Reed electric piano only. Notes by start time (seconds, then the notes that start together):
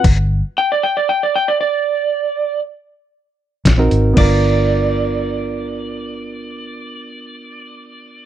3.78 C4 D#4 F#4 A#4
4.14 B3 D4
4.18 F4 A#4